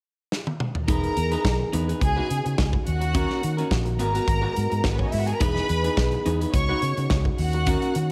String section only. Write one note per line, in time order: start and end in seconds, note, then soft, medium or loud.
0.88 1.72 A#4 medium
0.88 1.72 A#5 loud
2.02 2.57 G#4 loud
2.02 2.57 G#5 loud
2.86 3.69 F#4 medium
2.86 3.69 F#5 medium
3.98 4.84 A#4 medium
3.98 4.84 A#5 medium
4.91 4.99 B3 medium
4.91 4.99 B4 medium
4.98 5.06 C#4 medium
4.98 5.06 C#5 medium
5.05 5.12 D#4 medium
5.05 5.12 D#5 medium
5.12 5.20 E4 medium
5.12 5.20 E5 medium
5.19 5.27 F#4 medium
5.19 5.27 F#5 medium
5.27 5.34 G#4 medium
5.27 5.34 G#5 medium
5.33 5.41 A#4 medium
5.33 5.41 A#5 medium
5.40 6.24 B4 loud
5.40 6.24 B5 loud
6.53 7.09 C#5 medium
6.53 7.09 C#6 loud
7.38 8.12 F#4 medium
7.38 8.12 F#5 loud